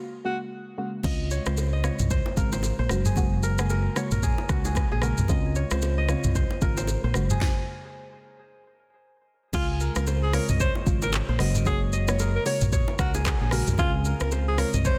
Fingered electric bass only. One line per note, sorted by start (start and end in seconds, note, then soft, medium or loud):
1.04 1.38 C#2 loud
1.46 1.89 C#2 medium
1.99 2.21 C2 medium
2.37 2.70 G#1 medium
2.79 2.88 A#1 medium
2.90 3.87 F#1 loud
4.12 4.33 A#1 medium
4.49 4.83 C#2 medium
4.91 5.13 A#1 medium
5.18 5.27 C2 medium
5.29 5.63 C#2 loud
5.71 6.13 C#2 medium
6.24 6.45 C2 medium
6.62 6.95 G#1 medium
7.04 7.13 A#1 loud
7.15 7.36 F#1 loud
9.54 9.87 C#2 loud
9.96 10.38 C#2 medium
10.49 10.70 C2 medium
10.86 11.20 G#1 medium
11.29 11.37 A#1 loud
11.40 12.37 F#1 loud
12.61 12.83 A#1 medium
12.99 13.32 C#2 medium
13.41 13.62 A#1 medium
13.67 13.76 C2 loud
13.79 14.12 C#2 loud
14.21 14.63 C#2 medium
14.74 14.95 C2 medium